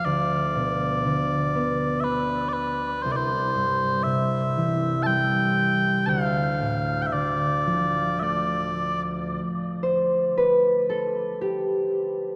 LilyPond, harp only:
\new Staff \with { instrumentName = "Harp" } { \clef bass \time 3/4 \key d \dorian \tempo 4 = 59 d,8 b,8 d8 b8 d'4 | c,8 g,8 c8 e8 g4 | d,8 a,8 d8 f8 a4 | r8 c''8 b'8 a'8 g'4 | }